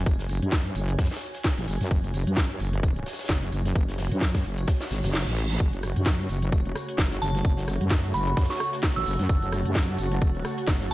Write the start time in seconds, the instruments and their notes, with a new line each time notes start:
Already playing: ambient pad F#4 C#5 G#5
0.06 wobble bass F#1, kick, tambourine
0.19 snare, closed hi-hat
0.29 open hi-hat, tambourine
0.42 wobble bass F#2, closed hi-hat
0.52 kick, snare, tambourine
0.66 closed hi-hat
0.76 wobble bass F#1, open hi-hat, tambourine
0.89 closed hi-hat
0.98 wobble bass F#2, kick, snare, tambourine
1.05 snare, tambourine
1.11 snare, closed hi-hat, tambourine
1.16 snare, tambourine
1.22 open hi-hat, tambourine
1.35 snare, closed hi-hat
1.44 kick, snare, open hi-hat
1.58 wobble bass A1, closed hi-hat
1.68 wobble bass F#1, open hi-hat, tambourine
1.81 wobble bass F#2, snare, closed hi-hat
1.91 wobble bass F#1, kick, tambourine
2.04 closed hi-hat
2.14 open hi-hat, tambourine
2.27 wobble bass F#2, closed hi-hat
2.36 kick, snare, tambourine
2.60 wobble bass F#1, open hi-hat, tambourine
2.73 closed hi-hat
2.83 kick, tambourine
2.96 closed hi-hat
3.06 snare, open hi-hat, tambourine
3.13 snare, tambourine
3.19 snare, closed hi-hat, tambourine
3.25 snare, tambourine
3.29 wobble bass F#1, kick, snare, tambourine
3.42 snare, closed hi-hat
3.52 wobble bass F#1, open hi-hat, tambourine
3.65 snare, closed hi-hat
3.75 wobble bass F#1, kick, tambourine
3.88 snare, closed hi-hat
3.98 snare, open hi-hat, tambourine
4.12 wobble bass F#2, closed hi-hat
4.21 kick, snare, tambourine
4.35 kick, snare, closed hi-hat, tambourine
4.45 wobble bass F#1, open hi-hat
4.57 closed hi-hat, tambourine
4.68 kick, snare, tambourine, reverse cymbal
4.81 snare, closed hi-hat, tambourine
4.91 wobble bass G#1, snare, open hi-hat, tambourine
5.03 wobble bass F#1, snare, closed hi-hat, tambourine
5.13 snare, open hi-hat
5.27 wobble bass A1, closed hi-hat
5.37 open hi-hat, tambourine
5.50 snare, closed hi-hat
5.60 wobble bass F#1, analog synth pad C#3 A3 F#4, kick, tambourine
5.73 closed hi-hat
5.83 cross-stick, open hi-hat, tambourine
5.96 wobble bass F#2, closed hi-hat
6.06 kick, snare, tambourine
6.29 wobble bass F#1, open hi-hat, tambourine
6.42 closed hi-hat
6.52 kick, tambourine
6.66 closed hi-hat
6.75 cross-stick, open hi-hat, tambourine
6.89 closed hi-hat
6.98 wobble bass F#1, kick, snare, tambourine
7.05 ambient pad A5
7.12 snare, closed hi-hat
7.22 wobble bass F#1, synth bell A5, open hi-hat, tambourine
7.35 snare, closed hi-hat
7.45 wobble bass F#1, kick, tambourine
7.57 snare, closed hi-hat
7.68 cross-stick, open hi-hat, tambourine
7.81 wobble bass F#2, closed hi-hat
7.91 kick, snare, tambourine
8.04 closed hi-hat
8.14 wobble bass F#1, synth bell B5, open hi-hat, tambourine
8.27 synth bell B5, closed hi-hat
8.37 wobble bass F#2, kick, snare, tambourine
8.43 snare, tambourine
8.50 synth bell C#6, snare, closed hi-hat, tambourine
8.55 snare, tambourine
8.60 synth bell C#6, cross-stick, open hi-hat, tambourine
8.73 snare, closed hi-hat
8.83 kick, snare, open hi-hat
8.96 wobble bass A1, synth bell E6, closed hi-hat
9.06 wobble bass F#1, open hi-hat, tambourine
9.19 wobble bass F#2, snare, closed hi-hat
9.29 wobble bass F#1, kick, tambourine
9.42 closed hi-hat
9.52 cross-stick, open hi-hat, tambourine
9.65 wobble bass F#2, closed hi-hat
9.75 kick, snare, tambourine
9.99 wobble bass F#1, open hi-hat, tambourine
10.12 closed hi-hat
10.21 kick, tambourine
10.35 closed hi-hat
10.45 cross-stick, open hi-hat, tambourine
10.58 closed hi-hat
10.68 wobble bass F#1, kick, snare, tambourine
10.81 snare, closed hi-hat
10.90 tambourine